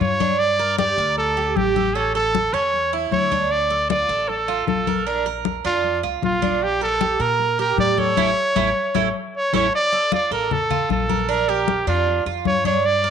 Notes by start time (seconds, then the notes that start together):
Already playing: F4
0.00 G2 C#5, high conga
0.20 D4, high conga
0.39 D5, high conga
0.59 A#4, high conga
0.78 G4 D5, high conga
0.98 D2 A#4, high conga
1.18 A4, high conga
1.37 G4, high conga
1.56 A1 G4, high conga
1.76 A4, high conga
1.95 C#4 A4, high conga
2.15 A4, high conga
2.35 high conga
2.53 E2 C#4 C#5, high conga
2.74 high conga
2.93 E4, high conga
3.11 D2 C#5, high conga
3.32 D4, high conga
3.51 D5, high conga
3.70 A4, high conga
3.90 F4 D5, high conga
4.09 A1 A4, high conga
4.28 A4, high conga
4.48 F4, high conga
4.67 A#1 A4, high conga
4.87 A#4, high conga
5.07 D4 A#4, high conga
5.26 A#4, high conga
5.45 high conga
5.65 F2 D4 F4, high conga
5.84 high conga
6.03 C#2 F4, high conga
6.22 A#1 F4, high conga
6.42 D4, high conga
6.62 G4, high conga
6.81 A4 A#4, high conga
7.00 G4, high conga
7.20 A#2 A#4, high conga
7.39 high conga
7.59 G4 A#4, high conga
7.78 A2 D5, high conga
7.98 A4 C#5, high conga
8.17 A1 C#4 E4 A4, high conga
8.56 A1 C#4 E4 A4, high conga
8.95 A1 C#4 E4 A4, high conga
9.36 C#5
9.53 A1 C#4 E4 A4 C#5, high conga
9.73 D5, high conga
9.93 A4, high conga
10.12 F4 D5, high conga
10.31 A1 A4 A#4, high conga
10.51 A4, high conga, low conga
10.70 F4, high conga, low conga
10.89 A#1 A4, high conga
11.09 A#4, high conga
11.29 D4 A#4, high conga
11.49 G4 A#4, high conga
11.68 high conga
11.87 F2 D4 F4, high conga
12.07 high conga
12.26 F2 F4, high conga
12.45 G2 C#5, high conga
12.65 D4 C#5, high conga
12.84 D5, high conga
13.04 A#4, high conga